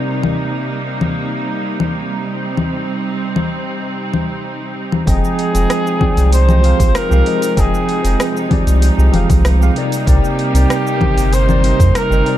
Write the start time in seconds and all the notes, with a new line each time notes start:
Already playing: C3 G3 A#3 C4 D#4 A#4 D5
0.23 low conga
1.01 low conga
1.80 low conga
2.26 C4
2.57 low conga
3.36 low conga
4.14 low conga
4.92 low conga
5.05 F1 C3 F3 G#3 C4 D#4 G#4 G5, kick, open hi-hat, shaker
5.09 D#5
5.25 shaker
5.39 open hi-hat
5.53 F1 F3 C4 G#4 G5, open hi-hat, shaker
5.57 D#5
5.70 cross-stick, open hi-hat, shaker
5.87 shaker
5.99 F3 C4 G#4 D5 G5, kick, low conga
6.17 C2, open hi-hat, shaker
6.32 C5, open hi-hat, shaker
6.46 F3 C4 G4 G#4, low conga, shaker
6.51 D#5
6.61 F3 C4 G4 G#4 F5, open hi-hat
6.80 A#1, kick, open hi-hat, shaker
6.95 A#4, cross-stick, open hi-hat, shaker
7.09 C2 F3 C4 G4 G#4, shaker
7.13 F5
7.24 F3 C4 G4 G#4 D#5, open hi-hat
7.42 open hi-hat, shaker
7.55 F1 F3 C4 G#4 D#5 G5, kick, open hi-hat, shaker
7.59 G#4
7.74 shaker
7.89 open hi-hat
8.02 F1 F3 C4 G#4 G5, open hi-hat, shaker
8.06 D#5
8.20 cross-stick, open hi-hat, shaker
8.37 shaker
8.49 F3 C4 G4 G#4, kick, open hi-hat, low conga
8.53 D5
8.67 C2, open hi-hat, shaker
8.82 open hi-hat, shaker
8.96 C2 F3 C4 G4 G#4 D#5, shaker
9.11 F1 F3 C4 G4 G#4, open hi-hat, low conga
9.15 F5
9.30 C2, kick, open hi-hat, low conga, shaker
9.45 cross-stick, open hi-hat, shaker
9.59 F3 C4 G4 G#4 F5, shaker
9.74 C3 G3 A#3 C4 D#4 A#4 D5, open hi-hat
9.92 open hi-hat, shaker
10.05 C2 C3 C4 D#4 G4 A#4 D5, kick, open hi-hat, shaker
10.24 shaker
10.39 open hi-hat
10.53 C2 C3 C4 D#4 A#4 D5, open hi-hat, shaker
10.70 cross-stick, open hi-hat, shaker
10.87 shaker
10.99 C3 C4 D#4 A#4, kick, low conga
11.03 C5
11.17 G1, open hi-hat, shaker
11.33 C5, open hi-hat, shaker
11.46 C3 C4 D#4 A#4 D5, low conga, shaker
11.62 C3 C4 D#4 A#4 D#5, open hi-hat
11.79 F2, kick, open hi-hat, shaker
11.95 A#4, cross-stick, open hi-hat, shaker
12.09 G1 C3 C4 D#4 A#4 D#5, shaker
12.24 C3 C4 D#4 A#4, open hi-hat
12.28 D5